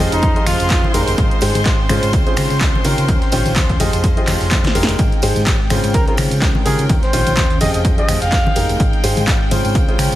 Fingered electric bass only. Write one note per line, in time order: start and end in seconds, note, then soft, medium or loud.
0.12 0.21 F1 medium
0.23 0.34 F2 medium
0.47 0.57 F1 loud
0.60 0.68 F1 medium
0.70 0.81 F2 medium
0.94 1.05 F1 medium
1.08 1.16 F1 loud
1.18 1.29 G#1 loud
1.42 1.53 G#2 loud
1.55 1.64 G#2 medium
1.66 1.86 G#1 medium
1.89 2.00 G#2 loud
2.03 2.11 G#2 medium
2.13 2.24 C#2 medium
2.37 2.48 C#3 loud
2.50 2.59 C#3 medium
2.61 2.72 C#2 medium
2.85 2.96 C#3 medium
2.98 3.07 C#3 loud
3.09 3.19 D#2 loud
3.32 3.43 A#1 medium
3.46 3.54 A#1 medium
3.56 3.76 D#2 medium
3.80 3.91 F1 loud
3.93 4.02 F1 medium
4.04 4.15 F2 medium
4.28 4.38 F1 medium
4.41 4.53 F1 loud
4.51 4.62 F2 medium
4.75 4.86 F1 medium
4.88 4.97 F1 loud
4.99 5.10 G#1 loud
5.23 5.34 G#2 loud
5.36 5.45 G#2 medium
5.47 5.66 G#1 medium
5.70 5.81 G#2 loud
5.84 5.92 G#2 medium
5.94 6.05 C#2 medium
6.18 6.29 C#3 loud
6.31 6.40 C#3 medium
6.42 6.53 C#2 medium
6.66 6.76 C#3 medium
6.79 6.87 C#3 medium
6.89 7.00 D#2 loud
7.13 7.24 A#1 loud
7.27 7.35 A#1 medium
7.37 7.57 D#2 medium
7.61 7.72 F1 loud
7.74 7.83 F1 medium
7.85 7.96 F2 medium
8.09 8.19 F1 loud
8.22 8.30 F1 medium
8.32 8.43 F2 medium
8.56 8.67 F1 medium
8.69 8.78 F1 loud
8.80 8.91 G#1 loud
9.04 9.15 G#2 loud
9.17 9.26 G#2 medium
9.28 9.47 G#1 medium
9.51 9.62 G#2 loud
9.65 9.73 G#2 medium
9.75 9.86 C#2 medium
9.99 10.10 C#3 loud
10.12 10.15 C#3 medium